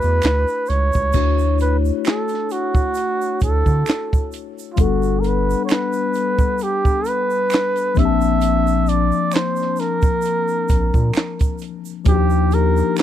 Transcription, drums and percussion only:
0.02 closed hi-hat soft
0.02 shaker soft
0.22 finger snap medium
0.22 snare medium
0.22 clap medium
0.22 closed hi-hat medium
0.22 shaker medium
0.48 shaker soft
0.66 closed hi-hat medium
0.66 shaker soft
0.93 kick medium
0.93 shaker soft
1.12 kick loud
1.12 crash medium
1.12 shaker medium
1.39 shaker soft
1.59 closed hi-hat medium
1.59 shaker soft
1.85 shaker soft
2.05 finger snap medium
2.05 snare medium
2.05 clap medium
2.05 closed hi-hat medium
2.05 shaker medium
2.28 closed hi-hat soft
2.28 shaker soft
2.34 snare soft
2.50 closed hi-hat medium
2.50 shaker soft
2.75 kick medium
2.75 shaker soft
2.94 closed hi-hat medium
2.94 shaker medium
3.21 shaker soft
3.40 kick medium
3.40 closed hi-hat medium
3.40 shaker soft
3.66 kick medium
3.66 shaker soft
3.86 finger snap medium
3.86 snare medium
3.86 clap medium
3.86 closed hi-hat medium
3.86 shaker medium
4.13 kick medium
4.13 shaker soft
4.32 closed hi-hat medium
4.32 shaker soft
4.59 shaker medium
4.77 kick loud
4.77 closed hi-hat medium
4.77 shaker medium
5.03 shaker soft
5.23 closed hi-hat medium
5.23 shaker soft
5.50 shaker soft
5.69 finger snap medium
5.69 snare loud
5.69 clap medium
5.69 closed hi-hat medium
5.69 shaker medium
5.93 shaker soft
6.14 closed hi-hat medium
6.14 shaker soft
6.38 kick medium
6.38 shaker soft
6.59 closed hi-hat medium
6.59 shaker medium
6.85 kick medium
6.85 shaker soft
7.05 closed hi-hat medium
7.05 shaker medium
7.30 shaker soft
7.50 finger snap medium
7.50 closed hi-hat medium
7.50 shaker medium
7.54 snare medium
7.54 clap medium
7.76 closed hi-hat soft
7.76 shaker soft
7.95 kick loud
7.95 closed hi-hat medium
7.95 shaker soft
8.21 shaker soft
8.41 closed hi-hat medium
8.41 shaker medium
8.67 shaker soft
8.87 closed hi-hat medium
8.87 shaker soft
9.12 shaker soft
9.32 finger snap medium
9.32 closed hi-hat medium
9.32 shaker medium
9.36 snare medium
9.36 clap medium
9.56 shaker soft
9.62 snare soft
9.76 closed hi-hat medium
9.76 shaker soft
9.81 snare soft
10.02 kick loud
10.02 shaker soft
10.22 closed hi-hat medium
10.22 shaker medium
10.48 shaker soft
10.69 kick medium
10.69 closed hi-hat medium
10.69 shaker medium
10.94 kick medium
10.94 shaker soft
11.14 finger snap medium
11.14 snare medium
11.14 closed hi-hat medium
11.14 shaker medium
11.18 clap medium
11.39 kick medium
11.39 closed hi-hat soft
11.39 shaker soft
11.58 closed hi-hat medium
11.58 shaker soft
11.85 shaker medium
12.05 kick loud
12.05 closed hi-hat medium
12.05 shaker medium
12.30 shaker soft
12.51 closed hi-hat medium
12.51 shaker soft
12.77 shaker soft
12.97 finger snap medium
12.97 closed hi-hat medium
12.97 shaker medium

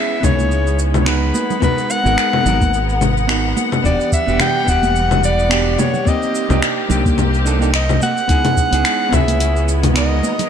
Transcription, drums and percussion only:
0.23 kick loud
0.23 low conga medium
0.23 shaker medium
0.38 high conga medium
0.38 shaker soft
0.52 shaker soft
0.67 shaker soft
0.79 shaker medium
0.94 low conga medium
0.94 shaker soft
1.06 finger snap loud
1.06 shaker soft
1.34 high conga medium
1.34 shaker medium
1.50 low conga medium
1.50 shaker soft
1.62 kick loud
1.62 low conga medium
1.62 shaker soft
1.78 shaker soft
1.90 shaker medium
2.06 shaker soft
2.18 finger snap medium
2.18 shaker soft
2.33 low conga medium
2.46 low conga medium
2.46 shaker medium
2.61 kick medium
2.61 high conga medium
2.61 shaker soft
2.74 shaker soft
2.89 shaker soft
3.01 low conga medium
3.01 shaker medium
3.17 shaker soft
3.29 finger snap loud
3.29 shaker soft
3.57 high conga loud
3.57 shaker medium
3.72 low conga medium
3.72 shaker soft
3.85 kick loud
3.85 shaker soft
4.01 shaker soft
4.12 kick loud
4.12 shaker medium
4.28 shaker soft
4.40 finger snap medium
4.40 low conga medium
4.40 shaker soft
4.68 kick loud
4.68 shaker medium
4.83 high conga medium
4.83 shaker soft
4.96 shaker soft
5.11 low conga medium
5.11 shaker soft
5.24 shaker medium
5.39 shaker soft
5.51 finger snap loud
5.51 shaker soft
5.78 high conga loud
5.78 low conga medium
5.78 shaker medium
5.94 low conga medium
5.94 shaker soft
6.07 kick loud
6.07 shaker soft
6.23 shaker soft
6.35 shaker medium
6.50 low conga medium
6.50 shaker soft
6.62 finger snap medium
6.62 shaker soft
6.90 low conga medium
6.90 shaker medium
7.06 kick loud
7.06 high conga medium
7.06 shaker soft
7.18 low conga medium
7.18 shaker soft
7.34 shaker soft
7.46 shaker medium
7.62 shaker soft
7.74 finger snap loud
7.74 shaker soft
7.89 low conga medium
7.89 shaker soft
8.02 high conga medium
8.02 shaker medium
8.17 shaker soft
8.29 kick loud
8.29 open hi-hat soft
8.29 shaker soft
8.45 open hi-hat soft
8.45 low conga medium
8.45 shaker soft
8.57 kick medium
8.57 shaker medium
8.73 open hi-hat soft
8.73 shaker soft
8.85 finger snap medium
8.85 open hi-hat soft
8.85 shaker soft
9.13 kick loud
9.13 low conga medium
9.13 shaker medium
9.28 open hi-hat soft
9.28 high conga medium
9.28 shaker soft
9.40 open hi-hat medium
9.40 shaker soft
9.57 shaker soft
9.68 shaker medium
9.83 open hi-hat soft
9.83 low conga medium
9.83 shaker soft
9.96 finger snap medium
9.96 open hi-hat medium
9.96 shaker soft
10.23 high conga medium
10.23 shaker medium
10.39 open hi-hat soft
10.39 low conga medium
10.39 shaker soft

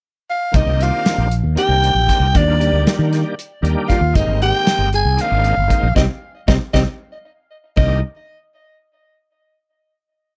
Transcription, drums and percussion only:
0.54 kick medium
0.54 closed hi-hat medium
0.81 closed hi-hat medium
1.06 snare loud
1.06 closed hi-hat medium
1.31 closed hi-hat medium
1.57 closed hi-hat medium
1.84 closed hi-hat medium
2.09 kick medium
2.09 snare soft
2.09 closed hi-hat medium
2.35 kick medium
2.35 closed hi-hat medium
2.61 closed hi-hat medium
2.87 snare loud
2.87 closed hi-hat medium
3.13 snare soft
3.13 closed hi-hat medium
3.39 closed hi-hat medium
3.65 closed hi-hat medium
3.90 kick medium
3.90 closed hi-hat medium
4.15 kick medium
4.15 closed hi-hat medium
4.42 closed hi-hat medium
4.67 snare loud
4.67 closed hi-hat medium
4.93 closed hi-hat medium
5.19 closed hi-hat medium
5.44 closed hi-hat medium
5.70 kick medium
5.70 closed hi-hat medium
5.96 kick medium
5.96 snare medium
6.48 kick medium
6.48 snare medium
6.74 kick medium
6.74 snare medium
7.77 kick medium

